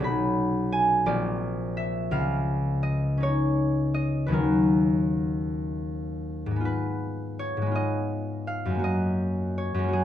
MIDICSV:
0, 0, Header, 1, 2, 480
1, 0, Start_track
1, 0, Tempo, 707547
1, 7, Time_signature, 6, 3, 24, 8
1, 1927, Tempo, 749064
1, 2887, Tempo, 772201
1, 4327, Tempo, 729927
1, 6554, End_track
2, 0, Start_track
2, 0, Title_t, "Harp"
2, 0, Program_c, 0, 46
2, 0, Note_on_c, 0, 35, 60
2, 5, Note_on_c, 0, 61, 44
2, 14, Note_on_c, 0, 63, 45
2, 27, Note_on_c, 0, 83, 79
2, 491, Note_on_c, 0, 80, 81
2, 719, Note_on_c, 0, 34, 71
2, 719, Note_on_c, 0, 60, 49
2, 720, Note_on_c, 0, 65, 48
2, 722, Note_on_c, 0, 74, 78
2, 746, Note_off_c, 0, 35, 0
2, 746, Note_off_c, 0, 63, 0
2, 747, Note_off_c, 0, 61, 0
2, 747, Note_off_c, 0, 80, 0
2, 747, Note_off_c, 0, 83, 0
2, 1200, Note_on_c, 0, 76, 77
2, 1432, Note_on_c, 0, 37, 57
2, 1436, Note_on_c, 0, 77, 79
2, 1456, Note_off_c, 0, 60, 0
2, 1457, Note_off_c, 0, 34, 0
2, 1458, Note_off_c, 0, 74, 0
2, 1610, Note_off_c, 0, 76, 0
2, 1919, Note_on_c, 0, 75, 78
2, 2141, Note_on_c, 0, 61, 46
2, 2160, Note_on_c, 0, 63, 49
2, 2176, Note_on_c, 0, 73, 76
2, 2626, Note_off_c, 0, 75, 0
2, 2634, Note_on_c, 0, 75, 74
2, 2839, Note_on_c, 0, 71, 53
2, 2849, Note_on_c, 0, 39, 54
2, 2857, Note_off_c, 0, 61, 0
2, 2860, Note_on_c, 0, 54, 37
2, 2864, Note_on_c, 0, 61, 40
2, 2867, Note_off_c, 0, 63, 0
2, 2875, Note_on_c, 0, 63, 41
2, 2883, Note_on_c, 0, 70, 60
2, 2902, Note_off_c, 0, 37, 0
2, 2902, Note_off_c, 0, 77, 0
2, 2903, Note_off_c, 0, 65, 0
2, 2921, Note_off_c, 0, 71, 0
2, 4207, Note_on_c, 0, 44, 48
2, 4235, Note_on_c, 0, 56, 37
2, 4268, Note_on_c, 0, 59, 42
2, 4296, Note_on_c, 0, 65, 40
2, 4325, Note_on_c, 0, 71, 65
2, 4327, Note_off_c, 0, 39, 0
2, 4333, Note_off_c, 0, 54, 0
2, 4335, Note_off_c, 0, 61, 0
2, 4344, Note_off_c, 0, 70, 0
2, 4345, Note_off_c, 0, 73, 0
2, 4812, Note_on_c, 0, 73, 76
2, 4920, Note_off_c, 0, 44, 0
2, 4928, Note_on_c, 0, 44, 49
2, 4951, Note_off_c, 0, 56, 0
2, 4959, Note_on_c, 0, 56, 46
2, 4982, Note_off_c, 0, 59, 0
2, 4990, Note_on_c, 0, 59, 42
2, 5015, Note_off_c, 0, 65, 0
2, 5023, Note_on_c, 0, 65, 47
2, 5042, Note_off_c, 0, 75, 0
2, 5050, Note_on_c, 0, 75, 76
2, 5219, Note_off_c, 0, 73, 0
2, 5356, Note_off_c, 0, 63, 0
2, 5522, Note_on_c, 0, 77, 69
2, 5641, Note_on_c, 0, 42, 48
2, 5664, Note_off_c, 0, 56, 0
2, 5672, Note_on_c, 0, 56, 40
2, 5703, Note_on_c, 0, 58, 41
2, 5727, Note_off_c, 0, 44, 0
2, 5733, Note_on_c, 0, 66, 40
2, 5755, Note_off_c, 0, 75, 0
2, 5758, Note_off_c, 0, 59, 0
2, 5763, Note_on_c, 0, 75, 73
2, 5774, Note_off_c, 0, 65, 0
2, 5786, Note_off_c, 0, 77, 0
2, 5790, Note_off_c, 0, 71, 0
2, 6249, Note_on_c, 0, 73, 66
2, 6350, Note_off_c, 0, 42, 0
2, 6358, Note_on_c, 0, 42, 54
2, 6377, Note_off_c, 0, 56, 0
2, 6385, Note_on_c, 0, 56, 47
2, 6411, Note_off_c, 0, 58, 0
2, 6419, Note_on_c, 0, 58, 47
2, 6443, Note_off_c, 0, 66, 0
2, 6451, Note_on_c, 0, 66, 43
2, 6481, Note_on_c, 0, 68, 67
2, 6554, Note_off_c, 0, 42, 0
2, 6554, Note_off_c, 0, 56, 0
2, 6554, Note_off_c, 0, 58, 0
2, 6554, Note_off_c, 0, 66, 0
2, 6554, Note_off_c, 0, 68, 0
2, 6554, Note_off_c, 0, 73, 0
2, 6554, Note_off_c, 0, 75, 0
2, 6554, End_track
0, 0, End_of_file